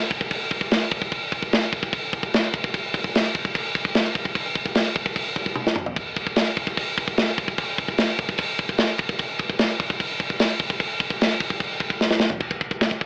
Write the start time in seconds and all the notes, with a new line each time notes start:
0.10 kick, crash
0.21 kick
0.31 kick, crash
0.51 kick, crash
0.61 kick
0.71 snare, crash
0.91 kick, crash
1.02 kick
1.12 kick, crash
1.32 kick, crash
1.43 kick
1.53 snare, crash
1.73 kick, crash
1.83 kick
1.93 kick, crash
2.13 kick, crash
2.23 kick
2.34 snare, crash
2.54 kick, crash
2.64 kick
2.74 kick, crash
2.94 kick, crash
3.04 kick
3.15 snare, crash
3.35 kick, crash
3.45 kick
3.55 kick, crash
3.75 kick, crash
3.85 kick
3.95 snare, crash
4.15 kick, crash
4.25 kick
4.35 kick, crash
4.55 kick, crash
4.66 kick
4.75 snare, crash
4.96 kick, crash
5.06 kick
5.16 kick, crash
5.36 kick, crash
5.46 kick
5.56 high tom
5.67 snare
5.76 mid tom
5.86 floor tom
5.96 kick, crash
6.17 kick, crash
6.27 kick
6.36 snare, crash
6.56 kick, crash
6.67 kick
6.77 kick, crash
6.98 kick, crash
7.08 kick
7.17 snare, crash
7.38 kick, crash
7.48 kick
7.58 kick, crash
7.78 kick, crash
7.88 kick
7.98 snare, crash
8.19 kick, crash
8.29 kick
8.38 kick, crash
8.58 kick, crash
8.69 kick
8.78 snare, crash
8.98 kick, crash
9.09 kick
9.19 kick, crash
9.39 kick, crash
9.50 kick
9.59 snare, crash
9.80 kick, crash
9.90 kick
10.00 kick, crash
10.20 kick, crash
10.30 kick
10.40 snare, crash
10.59 kick, crash
10.70 kick
10.80 kick, crash
11.00 kick, crash
11.10 kick
11.21 snare, crash
11.40 kick, crash
11.50 kick
11.60 kick, crash
11.80 kick, crash
11.90 kick
12.01 snare
12.11 snare
12.20 snare
12.30 floor tom
12.40 kick, china
12.51 kick
12.61 kick
12.71 kick
12.81 kick, snare, china
12.91 kick
13.01 kick